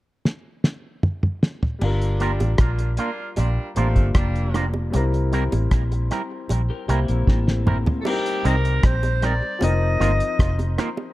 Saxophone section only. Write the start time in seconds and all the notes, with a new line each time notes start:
2.19 G3 A#3 D4
2.58 A#3 D4 F4
2.97 A#3 D4 F4
3.37 G3 A#3 D4
3.75 F3 A3 C4
4.14 G3 A#3 D4